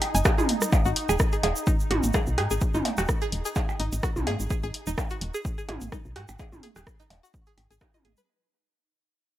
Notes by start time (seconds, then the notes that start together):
Already playing: D#4
0.02 open hi-hat, percussion blips
0.15 F#1 G#5, open hi-hat, shaker
0.25 G#4, kick, cross-stick, percussion blips, shaker
0.38 G#4, mid tom, shaker
0.49 open hi-hat
0.61 cross-stick, shaker
0.72 kick, percussion blips, shaker
0.85 G#1 F#4, shaker
0.96 open hi-hat
1.09 D#1 G#4, percussion blips, shaker
1.19 kick, cross-stick, shaker
1.33 G#4, open hi-hat, shaker
1.43 D#1 G#4, open hi-hat, percussion blips
1.56 shaker
1.67 D#4, kick, shaker
1.80 shaker
1.91 G#1 F#4, open hi-hat, mid tom
2.03 G#1, open hi-hat, shaker
2.14 G#4, kick, cross-stick, percussion blips, shaker
2.27 B1, shaker
2.38 G#2 G#4, cross-stick, open hi-hat, percussion blips
2.51 G#1 G#4, shaker
2.61 kick, shaker
2.74 G#1 D#4, mid tom, shaker
2.85 open hi-hat, percussion blips
2.98 D#1 F#4, cross-stick, shaker
3.09 kick, cross-stick, shaker
3.22 G#4, open hi-hat, shaker
3.32 D#1, open hi-hat
3.45 G#4, shaker
3.56 G#4, kick, percussion blips, shaker
3.69 percussion blips, shaker
3.80 G#1 D#4, open hi-hat
3.92 G#1, open hi-hat, shaker
4.03 F#4, kick, cross-stick, shaker
4.16 B1, mid tom, shaker
4.27 G#2 G#4, open hi-hat, percussion blips
4.40 G#1, shaker
4.50 G#4, kick, shaker
4.63 G#1 G#4, shaker
4.74 open hi-hat
4.87 D#1 D#4, shaker
4.98 kick, cross-stick, percussion blips, shaker
5.10 F#4, open hi-hat, shaker
5.21 D#1, open hi-hat
5.34 G#4, shaker
5.45 kick, shaker
5.58 G#4, shaker
5.69 G#1 G#4, open hi-hat, mid tom, percussion blips
5.81 G#1, open hi-hat, shaker
5.92 D#4, kick, cross-stick, shaker
6.05 B1, shaker
6.16 G#2 F#4, cross-stick, open hi-hat
6.28 G#1, percussion blips, shaker
6.39 G#4, kick, percussion blips, shaker
6.52 G#1, mid tom, shaker
6.63 G#4, open hi-hat
6.76 D#1 G#4, cross-stick, shaker
6.87 kick, cross-stick, shaker
7.00 D#4, open hi-hat, shaker
7.10 D#1, open hi-hat, percussion blips
7.23 F#4, shaker
7.34 kick, shaker
7.46 G#4, shaker
7.58 G#1, open hi-hat, percussion blips
7.71 G#1 G#4, open hi-hat, shaker
7.81 D#4, kick, cross-stick, percussion blips, shaker
7.94 D#5, mid tom, shaker
8.05 G#1 G#4, open hi-hat
8.17 B4, shaker